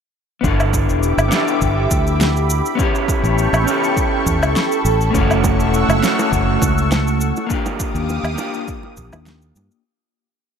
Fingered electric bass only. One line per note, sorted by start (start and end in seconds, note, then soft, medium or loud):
0.44 0.88 G1 medium
0.88 1.12 E1 medium
1.18 1.29 G1 medium
1.62 1.86 G1 loud
1.91 2.61 D2 medium
3.24 3.47 A1 medium
3.53 3.64 A1 medium
4.26 4.41 E2 medium
4.41 4.53 C#2 medium
4.85 5.09 A1 medium
5.14 5.59 F#1 medium
5.59 5.83 E1 medium
5.88 6.00 F#1 medium
6.32 6.56 F#1 loud
6.62 7.31 C#2 medium
7.95 8.18 D#2 medium
8.23 8.35 D#2 medium
8.97 9.10 A#1 medium
9.12 9.51 D#2 medium
9.56 9.68 G2 medium